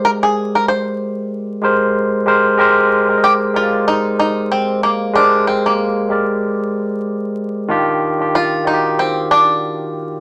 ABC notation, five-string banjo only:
X:1
M:4/4
L:1/16
Q:"Swing 16ths" 1/4=94
K:Ablyd
V:1 name="Five-string banjo"
B A2 B c8- c2 z2 | z4 G2 F2 E2 E2 C2 B,2 | D2 C B,4 z8 z | z4 F2 E2 C2 D6 |]